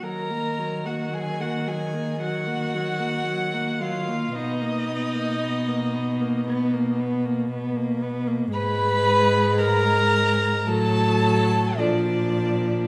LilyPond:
<<
  \new Staff \with { instrumentName = "Violin" } { \time 4/4 \key ees \minor \tempo 4 = 56 bes''8. ges''16 aes''16 ges''16 aes''8 ges''4. f''8 | dis''2~ dis''8 r4. | ces'''4 bes''4 a''4 d''4 | }
  \new Staff \with { instrumentName = "Violin" } { \time 4/4 \key ees \minor bes'8. ges'16 aes'16 ges'16 aes'8 ges'4. f'8 | dis'2~ dis'8 r4. | ces''4 bes'4 a'4 d'4 | }
  \new Staff \with { instrumentName = "Viola" } { \time 4/4 \key ees \minor ges16 bes16 ges16 bes16 ges16 bes16 ges16 bes16 ges16 bes16 ges16 bes16 ges16 bes16 ges16 bes16 | b16 ais16 b16 ais16 b16 ais16 b16 ais16 b16 ais16 b16 ais16 b16 ais16 b16 ais16 | aes2 ges4 f4 | }
  \new Staff \with { instrumentName = "Cello" } { \clef bass \time 4/4 \key ees \minor ees1 | b,1 | aes,2 a,4 bes,4 | }
>>